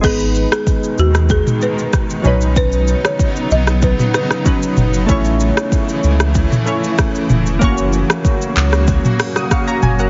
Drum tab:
CC |x---------------|----------------|----------------|----------------|
HH |----------------|----------------|----------------|----------o-----|
SH |xxxxxxxxxxxxxxxx|xxxxxxxxxxxxxxxx|xxxxxxxxxxxxxxxx|xxxxxxxxxxxxxxxx|
CP |----------------|----------------|----------------|------x---------|
SD |---r---r----r---|---r---r--rr----|---r---r----r---|---r---r--rrr---|
T2 |---------o----o-|---------o----o-|---------o----o-|---------o----o-|
BD |o---o---o---o---|o---o---o---o---|o---o---o---o---|o---o---o---o---|